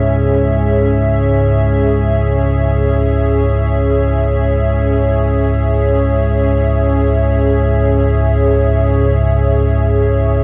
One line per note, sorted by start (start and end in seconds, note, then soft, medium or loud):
0.00 10.44 C#2 medium
0.00 10.44 G#2 medium
0.00 10.44 G#3 medium
0.00 10.44 C#4 medium
0.00 10.44 G#4 medium
0.00 10.44 C#5 medium
0.00 10.44 E5 medium